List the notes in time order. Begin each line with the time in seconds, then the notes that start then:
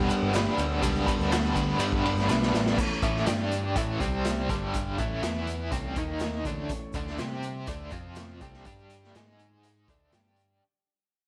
Already playing: G3 B3 D4 G4
0.09 B3 D4 B4, ride, shaker
0.23 G1
0.34 G3 B3 D4 B4, snare, ride, shaker
0.58 D2, ride, shaker
0.82 C#2 G3 B3 D4 B4, kick, ride, shaker
0.96 shaker
1.06 B3 D4 B4, kick, ride, shaker
1.19 D2, shaker
1.30 G3 B3 D4 B4, snare, ride, shaker
1.44 shaker
1.54 D2 B3 D4 B4, kick, ride, shaker
1.78 G2 G3 B3 D4 B4, ride, shaker
1.92 kick
2.04 B3 D4 B4, ride
2.15 G1, snare, shaker
2.28 B1 G3 B3 D4 B4, snare, shaker
2.42 snare, shaker
2.53 A1, snare, shaker
2.66 snare
2.78 E3 A3 C#4 A4 C#5, kick, crash, shaker
3.02 A1 A2 E3 A3, kick, closed hi-hat, shaker
3.16 snare
3.26 G2 G3 D4 G4 D5, snare, closed hi-hat, shaker
3.51 closed hi-hat, shaker
3.76 A1 A2 E3 A3 C#4 A4 C#5, kick, closed hi-hat, shaker
4.00 C2 C3 G3 C4 G4, kick, closed hi-hat, shaker
4.25 snare, closed hi-hat, shaker
4.49 G1 G2 D3 G3 D4, kick, snare, closed hi-hat, shaker
4.74 kick, closed hi-hat, shaker
4.98 A1 A2 E3 A3 C#4 A4 C#5, kick, closed hi-hat, shaker
5.22 E2 E3 B3 E4 B4, snare, closed hi-hat, shaker
5.47 closed hi-hat, shaker
5.71 C2 C3 E3 G3 A3 C4 C#4 A4 C#5, kick, closed hi-hat, shaker
5.96 D#2 D#3 A#3 D#4 A#4, kick, closed hi-hat, shaker
6.20 snare, closed hi-hat, shaker
6.45 D2 D3 E3 A3 C#4 D4 A4 C#5, kick, closed hi-hat, shaker
6.69 kick, closed hi-hat, shaker
6.93 D2 D3 A3 D4 A4, kick, closed hi-hat, shaker
7.07 snare
7.18 C3 G3 C4 G4 C5, snare, closed hi-hat, shaker
7.43 closed hi-hat, shaker
7.67 D2 D3 A3 D4 A4, kick, closed hi-hat, shaker
7.91 F2 C3 F3 C4 F4 F5, kick, closed hi-hat, shaker
8.15 snare, closed hi-hat, shaker
8.40 C2 C3 G3 A3 C4 D4 A4, kick, closed hi-hat, shaker
8.54 snare
8.65 G2 G3 D4 G4, kick, closed hi-hat, shaker
8.79 shaker
8.90 closed hi-hat, shaker
9.04 snare
9.15 G#2 G#3 D#4 G#4, snare, closed hi-hat, shaker
9.39 closed hi-hat, shaker
9.63 closed hi-hat, shaker
9.77 shaker
9.88 D2 D3 A3 D4 A4, kick, closed hi-hat, shaker
10.12 G2 G3 D4 G4, snare, closed hi-hat, shaker
10.27 shaker
10.36 closed hi-hat, shaker